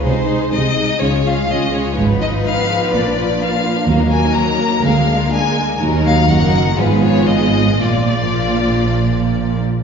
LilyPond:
<<
  \new Staff \with { instrumentName = "Violin section" } { \time 4/4 \key cis \mixolydian \tempo 4 = 124 bis'4 dis''4 cis''8 eis''8 dis''8 cis''8 | \key bes \phrygian r8 ees''8 f''4 d''4 f''4 | r8 aes''8 bes''4 f''4 aes''4 | r8 f''8 ges''4 ces''8 des''8 ees''4 |
d''2.~ d''8 r8 | }
  \new Staff \with { instrumentName = "Violin section" } { \time 4/4 \key cis \mixolydian << { gis'8 gis'8 gis'8 gis'8 gis'8 gis'8 gis'8 gis'8 | \key bes \phrygian ces''1 | bes'1 | bes'4 bes'4 aes'2 |
f'2.~ f'8 r8 | } \\ { dis'8 dis'8 dis'8 dis'8 eis'8 eis'8 eis'8 eis'8 | aes16 ces'16 ees'16 f'16 ees'16 ces'16 aes16 ces'16 bes16 d'16 f'16 d'16 bes16 d'16 f'16 d'16 | bes16 ees'16 bes16 ees'16 bes16 ees'16 bes16 ees'16 aes16 bes16 d'16 f'16 d'16 bes16 aes16 bes16 | ees'4 ees'4 f'2 |
f'2.~ f'8 r8 | } >> }
  \new Staff \with { instrumentName = "Viola section" } { \clef bass \time 4/4 \key cis \mixolydian << { dis'8 dis'8 dis'8 dis'8 cis'8 cis'8 cis'8 cis'8 | \key bes \phrygian ees'2 bes2~ | bes1 | bes4 bes4 ces'2 |
bes2.~ bes8 r8 | } \\ { gis8 gis8 gis8 gis8 gis8 gis8 gis8 gis8 | f1 | ges2 aes2 | ges4 ges4 f2 |
f2.~ f8 r8 | } >> }
  \new Staff \with { instrumentName = "Cello section" } { \clef bass \time 4/4 \key cis \mixolydian bis,4 bis,4 cis4 cis4 | \key bes \phrygian aes,4 r4 bes,4 r4 | ees,4 r4 d,4 r4 | ees,4 ges,4 aes,2 |
bes,2.~ bes,8 r8 | }
  \new Staff \with { instrumentName = "Double bass section" } { \clef bass \time 4/4 \key cis \mixolydian bis,,4 bis,,4 cis,4 cis,4 | \key bes \phrygian aes,,4 r4 bes,,4 r4 | ees,4 r4 d,4 r4 | ees,4 ges,,4 aes,,2 |
bes,,2.~ bes,,8 r8 | }
>>